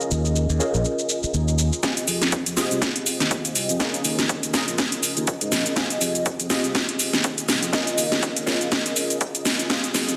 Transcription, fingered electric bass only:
0.11 D#2
0.50 D#2
0.74 A#1
1.23 muted fingered electric bass stroke
1.34 D#2
2.08 F2
2.46 F2
2.71 C2
3.21 D#2
3.56 C2
3.70 F2
4.05 D#2
4.43 D#2
4.68 A#1
5.17 D#2
5.42 G#2
5.52 A#1
6.01 F2
6.40 F2
6.64 C2
7.14 D#2
7.49 C2
7.63 F2
7.98 D#2
8.37 D#2
8.61 A#1
8.72 D#2
9.95 F2

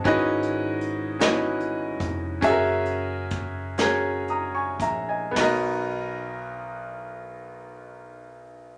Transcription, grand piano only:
0.04 G#2 C#4 E4 F#4 B4 D#5
1.19 C#4 D#4 F#4 B4 D#5
1.27 E4
2.41 C#4 F#4 G#4 A4 E5
2.50 A#4
3.78 C#4 F#4 G#4 A#4 C#5
4.30 A#5 D#6
4.55 G#5 C#6
4.81 E5 A#5
5.09 D#5 G#5
5.31 B3 D#4
5.37 B1 F#4 A#4
5.43 D#5

